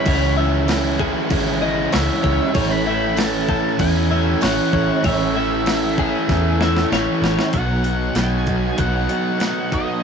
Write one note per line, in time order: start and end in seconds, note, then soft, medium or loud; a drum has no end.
0.00 0.07 C#5 medium
0.00 0.34 B5 medium
0.05 1.14 C#2 loud
0.05 0.99 C#3 loud
0.05 0.67 E3 loud
0.05 0.68 G#3 loud
0.05 0.69 C#4 loud
0.05 0.70 E4 loud
0.05 0.37 C#5 medium
0.05 kick loud
0.05 crash medium
0.36 1.01 G#3 medium
0.36 1.00 C#4 medium
0.36 0.98 E4 medium
0.36 1.65 E5 loud
0.67 1.30 E3 medium
0.67 1.31 G#3 medium
0.67 1.31 C#4 medium
0.67 1.32 E4 medium
0.67 snare loud
0.67 tambourine loud
0.67 crash medium
0.98 1.64 G#3 medium
0.98 1.63 C#4 medium
0.98 1.61 E4 medium
0.98 3.49 G#4 medium
0.98 kick medium
1.29 1.85 G#1 loud
1.29 1.93 C#3 loud
1.29 1.92 E3 loud
1.29 1.63 G#3 loud
1.29 1.62 C#4 loud
1.29 1.60 E4 loud
1.29 kick loud
1.29 crash medium
1.61 1.93 G#3 medium
1.61 1.94 C#4 medium
1.61 1.95 E4 medium
1.61 1.93 D#5 medium
1.92 2.08 C#2 medium
1.92 2.53 C#3 medium
1.92 2.55 E3 medium
1.92 2.56 G#3 medium
1.92 2.56 C#4 medium
1.92 2.57 E4 medium
1.92 2.23 C#5 medium
1.92 2.58 E5 medium
1.92 snare loud
1.92 tambourine medium
1.92 crash medium
2.23 2.38 C#2 medium
2.23 2.56 G#3 medium
2.23 2.56 C#4 medium
2.23 2.57 E4 medium
2.23 2.55 C#5 medium
2.23 kick medium
2.23 snare soft
2.54 3.63 A1 medium
2.54 3.79 A2 loud
2.54 3.16 E3 loud
2.54 3.17 A3 loud
2.54 3.18 C#4 loud
2.54 3.19 E4 loud
2.54 2.87 C#5 medium
2.54 2.71 G#5 loud
2.54 kick loud
2.54 crash medium
2.71 3.18 B5 loud
2.86 3.51 A3 medium
2.86 3.50 C#4 medium
2.86 3.48 E4 medium
2.86 4.11 E5 medium
3.16 3.79 E3 medium
3.16 3.80 A3 medium
3.16 3.80 C#4 medium
3.16 3.81 E4 medium
3.16 3.79 A5 loud
3.16 snare loud
3.16 tambourine loud
3.16 crash medium
3.48 4.12 A3 medium
3.48 4.11 C#4 medium
3.48 4.09 E4 medium
3.48 4.11 A4 medium
3.48 kick medium
3.79 4.34 E2 loud
3.79 4.42 A2 loud
3.79 4.41 E3 loud
3.79 4.12 A3 loud
3.79 4.11 C#4 loud
3.79 4.10 E4 loud
3.79 4.44 G#5 loud
3.79 kick loud
3.79 crash medium
4.11 4.42 A3 medium
4.11 4.43 C#4 medium
4.11 4.44 E4 medium
4.11 4.42 E5 medium
4.41 4.57 A1 medium
4.41 5.04 E3 medium
4.41 5.05 A3 medium
4.41 5.06 C#4 medium
4.41 5.07 E4 medium
4.41 4.72 C#5 medium
4.41 5.05 F#5 medium
4.41 snare loud
4.41 tambourine loud
4.41 crash medium
4.73 4.87 A1 medium
4.73 5.03 A3 medium
4.73 5.05 C#4 medium
4.73 5.05 E4 medium
4.73 5.03 C#5 medium
4.73 kick medium
5.04 6.12 A1 medium
5.04 5.98 A2 loud
5.04 5.66 E3 loud
5.04 5.67 A3 loud
5.04 5.68 C#4 loud
5.04 5.36 C#5 medium
5.04 6.88 E5 medium
5.04 kick loud
5.04 crash medium
5.08 5.69 E4 loud
5.34 5.99 A3 medium
5.34 5.98 C#4 medium
5.34 5.96 E4 medium
5.34 5.99 E5 medium
5.66 6.29 E3 medium
5.66 6.29 A3 medium
5.66 6.30 C#4 medium
5.66 6.30 E4 loud
5.66 snare loud
5.66 tambourine loud
5.66 crash medium
5.98 6.62 A3 medium
5.98 6.61 C#4 medium
5.98 6.59 E4 medium
5.98 6.61 G#4 medium
5.98 kick loud
6.29 6.83 E2 loud
6.29 6.91 A2 loud
6.29 6.90 E3 loud
6.29 6.62 A3 loud
6.29 6.61 C#4 loud
6.29 6.59 E4 loud
6.29 kick loud
6.29 snare medium
6.61 6.91 A3 medium
6.61 6.92 C#4 medium
6.61 6.93 E4 medium
6.61 6.92 E5 medium
6.61 snare medium
6.77 snare medium
6.91 7.05 A1 loud
6.91 7.52 E3 medium
6.91 7.52 A3 medium
6.91 7.53 C#4 medium
6.91 7.53 E4 medium
6.91 7.23 C#5 medium
6.91 snare medium
6.91 tambourine medium
7.22 7.36 A1 medium
7.22 7.53 A3 medium
7.22 7.53 C#4 medium
7.22 7.52 E4 medium
7.22 7.55 C#5 medium
7.22 snare loud
7.39 snare loud
7.53 8.08 B1 medium
7.53 10.03 B2 loud
7.53 8.17 F#3 loud
7.53 8.17 B3 loud
7.53 8.18 D#4 loud
7.53 8.17 F#5 medium
7.53 kick loud
7.53 open hi-hat medium
7.57 8.19 F#4 loud
7.84 open hi-hat medium
8.15 8.70 B1 loud
8.15 8.78 F#3 medium
8.15 8.50 B3 medium
8.15 8.49 D#4 medium
8.15 8.79 G#5 loud
8.15 snare loud
8.15 open hi-hat medium
8.15 tambourine loud
8.20 8.48 F#4 medium
8.47 8.78 B3 medium
8.47 8.79 D#4 medium
8.47 8.79 F#4 medium
8.47 kick medium
8.47 open hi-hat medium
8.76 9.06 B1 medium
8.76 9.40 B2 medium
8.76 9.41 F#3 medium
8.76 9.12 B3 medium
8.76 9.10 D#4 medium
8.76 9.76 F#5 loud
8.76 kick loud
8.76 open hi-hat medium
8.81 9.09 F#4 medium
9.09 9.74 B3 medium
9.09 9.72 D#4 medium
9.09 9.70 F#4 medium
9.09 open hi-hat medium
9.38 10.02 F#3 medium
9.38 10.03 B3 medium
9.38 10.03 D#4 medium
9.38 10.03 F#4 medium
9.38 snare loud
9.38 open hi-hat medium
9.38 tambourine loud
9.71 10.03 B3 medium
9.71 10.03 D#4 medium
9.71 10.03 F#4 medium
9.71 10.03 D#5 medium
9.71 kick medium
9.71 open hi-hat medium